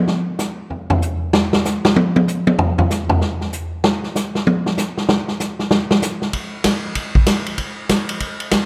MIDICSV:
0, 0, Header, 1, 2, 480
1, 0, Start_track
1, 0, Tempo, 312663
1, 112, Time_signature, 4, 2, 24, 8
1, 13287, End_track
2, 0, Start_track
2, 0, Title_t, "Drums"
2, 115, Note_on_c, 9, 38, 57
2, 268, Note_off_c, 9, 38, 0
2, 594, Note_on_c, 9, 44, 61
2, 596, Note_on_c, 9, 38, 52
2, 748, Note_off_c, 9, 44, 0
2, 749, Note_off_c, 9, 38, 0
2, 1078, Note_on_c, 9, 43, 37
2, 1232, Note_off_c, 9, 43, 0
2, 1382, Note_on_c, 9, 43, 106
2, 1536, Note_off_c, 9, 43, 0
2, 1564, Note_on_c, 9, 44, 61
2, 1717, Note_off_c, 9, 44, 0
2, 2047, Note_on_c, 9, 38, 104
2, 2200, Note_off_c, 9, 38, 0
2, 2348, Note_on_c, 9, 38, 102
2, 2502, Note_off_c, 9, 38, 0
2, 2533, Note_on_c, 9, 44, 60
2, 2535, Note_on_c, 9, 38, 54
2, 2687, Note_off_c, 9, 44, 0
2, 2688, Note_off_c, 9, 38, 0
2, 2838, Note_on_c, 9, 38, 110
2, 2991, Note_off_c, 9, 38, 0
2, 3012, Note_on_c, 9, 48, 100
2, 3166, Note_off_c, 9, 48, 0
2, 3317, Note_on_c, 9, 48, 102
2, 3471, Note_off_c, 9, 48, 0
2, 3497, Note_on_c, 9, 44, 66
2, 3499, Note_on_c, 9, 48, 38
2, 3651, Note_off_c, 9, 44, 0
2, 3652, Note_off_c, 9, 48, 0
2, 3791, Note_on_c, 9, 48, 99
2, 3945, Note_off_c, 9, 48, 0
2, 3970, Note_on_c, 9, 43, 112
2, 4123, Note_off_c, 9, 43, 0
2, 4273, Note_on_c, 9, 43, 104
2, 4427, Note_off_c, 9, 43, 0
2, 4456, Note_on_c, 9, 44, 66
2, 4458, Note_on_c, 9, 38, 50
2, 4610, Note_off_c, 9, 44, 0
2, 4611, Note_off_c, 9, 38, 0
2, 4750, Note_on_c, 9, 43, 108
2, 4904, Note_off_c, 9, 43, 0
2, 4930, Note_on_c, 9, 38, 55
2, 5084, Note_off_c, 9, 38, 0
2, 5236, Note_on_c, 9, 38, 37
2, 5390, Note_off_c, 9, 38, 0
2, 5414, Note_on_c, 9, 44, 64
2, 5567, Note_off_c, 9, 44, 0
2, 5893, Note_on_c, 9, 38, 103
2, 6047, Note_off_c, 9, 38, 0
2, 6194, Note_on_c, 9, 38, 36
2, 6348, Note_off_c, 9, 38, 0
2, 6377, Note_on_c, 9, 44, 62
2, 6378, Note_on_c, 9, 38, 64
2, 6530, Note_off_c, 9, 44, 0
2, 6532, Note_off_c, 9, 38, 0
2, 6680, Note_on_c, 9, 38, 61
2, 6834, Note_off_c, 9, 38, 0
2, 6859, Note_on_c, 9, 48, 95
2, 7012, Note_off_c, 9, 48, 0
2, 7159, Note_on_c, 9, 38, 58
2, 7312, Note_off_c, 9, 38, 0
2, 7331, Note_on_c, 9, 44, 67
2, 7333, Note_on_c, 9, 38, 55
2, 7485, Note_off_c, 9, 44, 0
2, 7487, Note_off_c, 9, 38, 0
2, 7637, Note_on_c, 9, 38, 53
2, 7791, Note_off_c, 9, 38, 0
2, 7810, Note_on_c, 9, 38, 112
2, 7964, Note_off_c, 9, 38, 0
2, 8110, Note_on_c, 9, 38, 46
2, 8264, Note_off_c, 9, 38, 0
2, 8289, Note_on_c, 9, 44, 68
2, 8291, Note_on_c, 9, 38, 46
2, 8443, Note_off_c, 9, 44, 0
2, 8444, Note_off_c, 9, 38, 0
2, 8588, Note_on_c, 9, 38, 50
2, 8742, Note_off_c, 9, 38, 0
2, 8762, Note_on_c, 9, 38, 116
2, 8915, Note_off_c, 9, 38, 0
2, 9068, Note_on_c, 9, 38, 99
2, 9221, Note_off_c, 9, 38, 0
2, 9243, Note_on_c, 9, 44, 67
2, 9244, Note_on_c, 9, 38, 58
2, 9396, Note_off_c, 9, 44, 0
2, 9398, Note_off_c, 9, 38, 0
2, 9544, Note_on_c, 9, 38, 50
2, 9698, Note_off_c, 9, 38, 0
2, 9720, Note_on_c, 9, 51, 72
2, 9723, Note_on_c, 9, 36, 27
2, 9874, Note_off_c, 9, 51, 0
2, 9877, Note_off_c, 9, 36, 0
2, 10194, Note_on_c, 9, 44, 67
2, 10194, Note_on_c, 9, 51, 92
2, 10196, Note_on_c, 9, 38, 84
2, 10200, Note_on_c, 9, 36, 24
2, 10348, Note_off_c, 9, 44, 0
2, 10348, Note_off_c, 9, 51, 0
2, 10349, Note_off_c, 9, 38, 0
2, 10354, Note_off_c, 9, 36, 0
2, 10673, Note_on_c, 9, 51, 77
2, 10678, Note_on_c, 9, 36, 26
2, 10827, Note_off_c, 9, 51, 0
2, 10831, Note_off_c, 9, 36, 0
2, 10980, Note_on_c, 9, 36, 77
2, 11134, Note_off_c, 9, 36, 0
2, 11153, Note_on_c, 9, 44, 58
2, 11153, Note_on_c, 9, 51, 89
2, 11154, Note_on_c, 9, 38, 90
2, 11158, Note_on_c, 9, 36, 24
2, 11306, Note_off_c, 9, 44, 0
2, 11306, Note_off_c, 9, 51, 0
2, 11308, Note_off_c, 9, 38, 0
2, 11312, Note_off_c, 9, 36, 0
2, 11459, Note_on_c, 9, 51, 51
2, 11613, Note_off_c, 9, 51, 0
2, 11634, Note_on_c, 9, 51, 69
2, 11637, Note_on_c, 9, 36, 26
2, 11788, Note_off_c, 9, 51, 0
2, 11791, Note_off_c, 9, 36, 0
2, 12117, Note_on_c, 9, 44, 63
2, 12117, Note_on_c, 9, 51, 81
2, 12118, Note_on_c, 9, 36, 20
2, 12119, Note_on_c, 9, 38, 84
2, 12271, Note_off_c, 9, 36, 0
2, 12271, Note_off_c, 9, 44, 0
2, 12271, Note_off_c, 9, 51, 0
2, 12272, Note_off_c, 9, 38, 0
2, 12417, Note_on_c, 9, 51, 61
2, 12571, Note_off_c, 9, 51, 0
2, 12593, Note_on_c, 9, 51, 66
2, 12596, Note_on_c, 9, 36, 24
2, 12746, Note_off_c, 9, 51, 0
2, 12749, Note_off_c, 9, 36, 0
2, 12895, Note_on_c, 9, 51, 51
2, 13049, Note_off_c, 9, 51, 0
2, 13070, Note_on_c, 9, 44, 76
2, 13070, Note_on_c, 9, 51, 80
2, 13071, Note_on_c, 9, 38, 88
2, 13075, Note_on_c, 9, 36, 20
2, 13223, Note_off_c, 9, 44, 0
2, 13223, Note_off_c, 9, 51, 0
2, 13225, Note_off_c, 9, 38, 0
2, 13229, Note_off_c, 9, 36, 0
2, 13287, End_track
0, 0, End_of_file